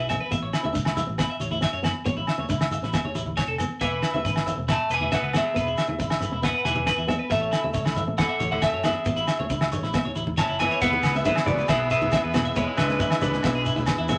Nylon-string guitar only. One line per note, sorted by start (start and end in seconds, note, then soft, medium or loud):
0.10 0.23 B3 medium
0.31 0.44 B3 medium
0.63 0.70 C#4 medium
0.73 0.87 D4 medium
1.07 1.14 C#4 medium
1.18 1.32 B3 medium
1.61 1.75 C#4 medium
1.83 1.97 B3 medium
2.05 2.19 B3 medium
2.38 2.45 C#4 medium
2.49 2.62 D4 medium
2.83 2.89 C#4 medium
2.94 3.07 B3 medium
3.38 3.51 C#4 medium
3.60 3.73 B3 medium
3.81 3.95 B3 medium
4.16 4.22 C#4 medium
4.26 4.39 D4 medium
4.58 4.64 C#4 medium
4.69 4.82 B3 medium
5.12 5.25 C#4 medium
5.34 5.47 B3 medium
5.54 5.68 B3 medium
5.88 5.95 E4 medium
5.99 6.12 D4 medium
6.32 6.39 C#4 medium
6.42 6.56 B3 medium
6.86 7.00 C#4 medium
7.07 7.21 B3 medium
7.30 7.44 B3 medium
7.64 7.71 C#4 medium
7.74 7.88 D4 medium
8.07 8.14 C#4 medium
8.19 8.32 B3 medium
8.63 8.76 C#4 medium
8.85 8.98 B3 medium
9.06 9.20 B3 medium
9.40 9.47 C#4 medium
9.51 9.64 D4 medium
9.83 9.90 E4 medium
9.95 10.08 B3 medium
10.39 10.52 C#4 medium
10.60 10.74 B3 medium
10.82 10.96 B3 medium
11.15 11.22 C#4 medium
11.25 11.39 D4 medium
11.58 11.65 C#4 medium
11.69 11.82 B3 medium
12.13 12.26 C#4 medium
12.34 12.48 B3 medium
12.56 12.70 B3 medium
12.89 12.96 C#4 medium
13.01 13.14 D4 medium
13.34 13.40 C#4 medium
13.45 13.58 B3 medium
13.88 14.01 C#4 medium
14.09 14.18 B3 medium